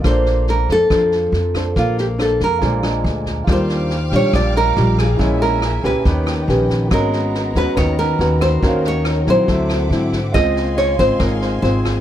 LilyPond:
<<
  \new Staff \with { instrumentName = "Violin section" } { \time 4/4 \key bes \major \tempo 4 = 140 << { r1 | r1 | \key aes \lydian <f'' g'' f'''>1 | <fes'' aes''>2 <ees'' g''>2 |
<ges' bes''>1 | ees''2 <e'' fis'' d'''>2 | <f'' aes'' c'''>1 | } \\ { r1 | r1 | d'''1 | bes'2 ces'2~ |
ces'1 | bes'2 c'2~ | c'1 | } >> }
  \new Staff \with { instrumentName = "Nylon-string guitar" } { \time 4/4 \key bes \major c''4 bes'8 a'2~ a'8 | f'8 g'8 a'8 bes'4. r4 | \key aes \lydian c''4. des''8 d''8 bes'4 aes'8~ | aes'8 bes'4 ces''4. r4 |
bes'4. ces''8 des''8 bes'4 c''8~ | c''8 des''4 c''4. r4 | ees''4 des''8 c''8 bes'4 c''4 | }
  \new Staff \with { instrumentName = "Grand piano" } { \time 4/4 \key bes \major <f' a' c'' d''>1~ | <f' a' c'' d''>2 <f' aes' c'' d''>2 | \key aes \lydian <f' g' bes' d''>2~ <f' g' bes' d''>8 <f' g' bes' ees''>4. | <fes' aes' bes' des''>2 <g' ces'' des''>2 |
<ces' ges' des''>1 | <ges' bes' des'' f''>2 <fis' a' c'' e''>2 | <f' aes' c'' ees''>1 | }
  \new Staff \with { instrumentName = "Nylon-string guitar" } { \time 4/4 \key bes \major << { <d' a' c''>2 <d' a' c''>4 r8 <d' a' c''>8~ | <d' a' c''>4 <d' a' c''>8 r8 <aes d' f'>8 <aes d' f'>4. | \key aes \lydian <g d' f'>4 r8 <g d' f'>4. <g d' f'>8 r8 | <aes des' fes'>4 r8 <des' g' ces''>4. <des' g' ces''>4 |
<des' ges'>4. <des' ges' ces''>4. <des' ges' ces''>4 | <des' ges' bes'>4. <ges c' fes'>4. <fis c' e'>8 r8 | <aes c' f'>4. <aes c' f'>4. <aes c' f'>4 | } \\ { bes2 f2 | bes2 bes,2 | ees2 bes,2 | bes,2 ees2 |
aes2 ees2 | ees2 d2 | des2 aes,2 | } >> }
  \new Staff \with { instrumentName = "Upright bass" } { \clef bass \time 4/4 \key bes \major bes,,4. f,8 f,4 f,4 | bes,,4. f,8 bes,,4 d,4 | \key aes \lydian ees,4. bes,,16 r16 bes,,4 bes,,4 | bes,,4. des,16 r16 ees,4 bes,,4 |
aes,,4. ees,16 r16 ees,4 ees,4 | ees,4. bes,,16 r16 d,4 aes,4 | des,4. aes,,16 r16 aes,,4 aes,,4 | }
  \new DrumStaff \with { instrumentName = "Drums" } \drummode { \time 4/4 <bd ss sn>8 sn8 sn8 <bd sn>8 <bd ss sn>8 sn8 sn8 <bd ss sn>8 | <bd sn>8 sn8 <ss sn>8 <bd sn>8 <bd sn>8 <ss sn>8 sn8 <bd sn>8 | <bd ss sn>8 sn8 sn8 <bd sn>8 <bd ss sn>8 sn8 sn8 <bd ss sn>8 | <bd sn>8 sn8 <ss sn>8 <bd sn>8 <bd sn>8 <ss sn>8 sn8 <bd sn>8 |
<bd ss sn>8 sn8 sn8 <bd sn>8 <bd ss sn>8 sn8 sn8 <bd ss sn>8 | <bd sn>8 sn8 <ss sn>8 <bd sn>8 <bd sn>8 <ss sn>8 sn8 <bd sn>8 | <bd ss sn>8 sn8 sn8 <bd sn>8 <bd ss sn>8 sn8 sn8 <bd ss sn>8 | }
>>